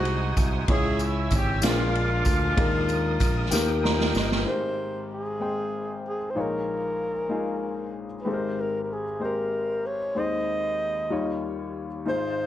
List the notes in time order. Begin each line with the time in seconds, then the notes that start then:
Already playing: C2 C3 G#3 D#4 F#4 C5 F#5 G#5 D#6
0.05 ride
0.37 C2, kick, ride, tambourine
0.68 C#2 C#3 G#3 C#4 E4 G#4 C#5 E5 E6, kick, ride
0.99 E4, ride, tambourine
1.31 G#1, kick, ride, tambourine
1.35 G4
1.62 A#1 A#2 G#3 D4 F4 A#4 F5 D6, snare, ride, tambourine
1.66 G#3 D4 F4
1.95 ride
2.25 D2, kick, ride, tambourine
2.56 D#2 D#3 G#3 A#3 A#4 D#6, kick, ride
2.89 ride, tambourine
3.20 A#1, kick, ride, tambourine
3.51 D#2 D#3 A#3 G4 A#4 G5 D#6, snare, tambourine
3.84 A#5, snare
4.01 snare
4.14 G1 D#5, snare, tambourine
4.32 snare
4.45 G#1 G#2 G#3 C4 G4 A#4 C5
5.13 G#4
5.40 G#3 C4 C5 G5
6.08 G#4
6.30 C5
6.35 A#1 A#2 G#3 D#4 F4 C#5
6.40 A#4
7.29 G#3 D#4 F4 G#4
8.21 G#3 B4
8.26 G#1 G#2 C4 G4 A4
8.30 A#4 C5
8.60 A#4
8.84 A#4
8.93 G#4
9.20 G#3 C4 G4 C5
9.24 A#4
9.86 C#5
10.15 D#2 D#3 G#3 C4 D#4 C5 D#5
11.10 D#2 D#3 G3 D#4 F4 C#5
12.05 G#1 G#2 G#3 D#4 F4 C5